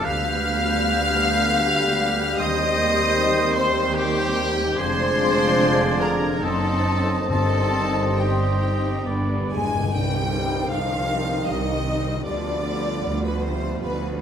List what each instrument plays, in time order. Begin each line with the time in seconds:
Already playing: harp F3 D4
0.04 double bass section D2, cello section D2, harp D3, trombone section D3 G3, viola section G3 B3, french horn section B3 G4, oboe B4, trumpet section F5, violin section F5 F6, flute section G6
0.45 harp D4
0.84 harp G3
1.23 harp B4
1.62 harp G3
2.01 harp D4
2.38 double bass section D#2, cello section D#2, harp D#3, trombone section D#3, french horn section C4, viola section C4, oboe C5, trumpet section D#5, violin section D#5 D#6, flute section G6
2.78 harp D#4
3.15 harp G3
3.54 trumpet section C5, violin section C5 C6
3.93 harp G3, trumpet section G4, violin section G4 G5, oboe C5, flute section G6
4.36 harp D#4
4.77 double bass section F1, harp F2, cello section F2, trombone section D3 F3, viola section G#3 D4, french horn section D4 G#4, trumpet section C5, violin section C5 C6, oboe D5, flute section G#6
5.21 harp F3
5.61 harp G#3
6.00 violin section A#4 A#5, trumpet section A#4, harp D5
6.40 double bass section F#1, harp F#2, cello section F#2, trombone section D#3 F#3, viola section C4 D#4, french horn section C4 C5, violin section A4 A5, trumpet section A4, oboe D#5, flute section C6
6.86 harp D#4
7.29 double bass section G1, harp G2, timpani G2, cello section G2, trombone section G3, viola section C4 D#4, violin section A4 A5, trumpet section A4, oboe D#5, flute section C6
7.75 harp G3
8.17 harp C4, viola section D#4, trumpet section G4, violin section G4 G5, flute section C6
8.21 viola section C4, oboe D#5
8.64 harp C5
9.05 double bass section G1, harp G2, timpani G2, cello section G2, trombone section D3, viola section B3 D4, french horn section D4 B4, oboe D5, flute section B5
9.13 timpani G2
9.22 timpani G2
9.31 timpani G2
9.39 timpani G2
9.48 timpani G2, harp D4, violin section G#5, flute section G#5
9.52 french horn section G#3, harp D5
9.57 timpani G2
9.67 timpani G2
9.75 timpani G2, harp C3
9.80 timpani G2, harp C4
9.85 harp D#4 C5
9.93 double bass section C2, cello section C2, trombone section D#3 C4, french horn section G3, violin section G5, flute section G5, tam-tam
10.31 viola section G3 D#4, violin section C5
10.71 double bass section C2, cello section C2, french horn section F3, violin section F5, flute section F5
11.10 viola section G3 D#4, violin section C5
11.49 double bass section C2, cello section C2, french horn section D#3, violin section D#5, flute section D#5
11.87 viola section G3 D#4, violin section C5
12.09 harp D3
12.13 harp F4
12.18 harp G4
12.22 double bass section D2, french horn section D3, harp B4, violin section D5
12.27 cello section D2, trombone section F3 B3, viola section G3 F4, violin section B4, flute section D5
12.65 viola section G3 F4, violin section B4
13.05 double bass section D2, cello section D2
13.24 french horn section B2, violin section B4, flute section B4
13.43 french horn section C3, viola section G3 F4, violin section B4 C5, flute section C5
13.81 double bass section D2, cello section D2, french horn section B2, flute section B4, violin section B4